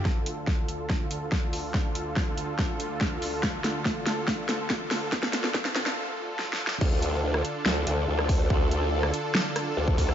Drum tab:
CC |------------------------------------------------|------------------------------------------------|------------------------------------------------|------------------------------------------------|
HH |------x-----------x-----------x-----------o-----|------x-----------x-----------x-----------o-----|------x-----------x-----------x-----------o-----|------x-----------x-----------------------------|
SD |o-----------o-----------o-----------o-----------|o-----------o-----------o-----------o-----------|o-----o-----o-----o-----o-----o-----o-----o-----|o--o--o--o--o--o--o--o--------------o---o---o---|
BD |o-----------o-----------o-----------o-----------|o-----------o-----------o-----------o-----------|o-----------o-----------o-----------o-----------|o-----------o-----------------------------------|

CC |x-----------------------------------------------|------------------------------------------------|
HH |------x-----------x-----------x-----------o-----|------x-----------x-----------x-----------o-----|
SD |---------------r--------o--------------r--------|---------------r--------o-----r--------------r--|
BD |o-----------------------------------------o-----|o--------------------------------------o--o-----|